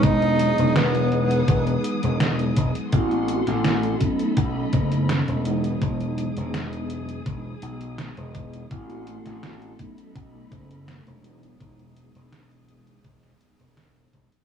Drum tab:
HH |xxxxxxxxxxxxxxxx|xxxxxxxxx-xxxxxx|xxxxxxxxx-xxxxxx|xxxxxxxxx-xxxxxx|
SD |----o-------o---|---oo-------o---|----o-------o---|---oo-------o---|
BD |o-------o-----o-|o-----o-o-o-----|o-------o-----o-|o-----o-o-o-----|

HH |xxxxxxxxxxxxxxxx|
SD |----o----o--o---|
BD |o-------o-----o-|